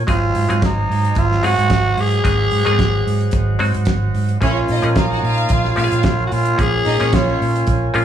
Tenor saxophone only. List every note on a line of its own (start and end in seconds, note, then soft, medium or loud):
0.10 0.67 F4 loud
0.65 1.20 D#4 medium
1.19 1.47 F4 loud
1.45 2.02 F#4 loud
2.00 3.62 G#4 loud
4.44 5.00 F4 loud
4.98 5.54 D#4 medium
5.52 6.26 F4 loud
6.27 6.35 F#4 medium
6.34 6.63 F4 loud
6.61 7.16 G#4 loud
7.14 7.95 F4 loud